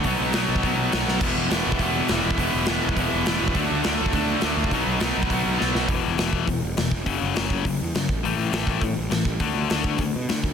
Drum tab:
CC |----------------|x---------------|----------------|----------------|
HH |o---o---o---o---|o---o---o---o---|o---o---o---o---|o---o---o---o---|
SD |----o-------o-o-|----o-------o---|----o-------o---|----o-------o---|
BD |o------oo-------|o------oo------o|o------oo------o|o------oo------o|

CC |----------------|----------------|----------------|----------------|
HH |o---o---o-------|o---o---o---o---|o---o---o---o---|o---o---o---o---|
SD |----o-------o-o-|----o-------o---|----o-------o---|----o-------o---|
BD |o------oo-------|o-----o-o-----o-|o-----o-o-----o-|------o-o-----o-|

CC |----------------|
HH |o---o---o---o---|
SD |----o-------o---|
BD |o-----o-o-----o-|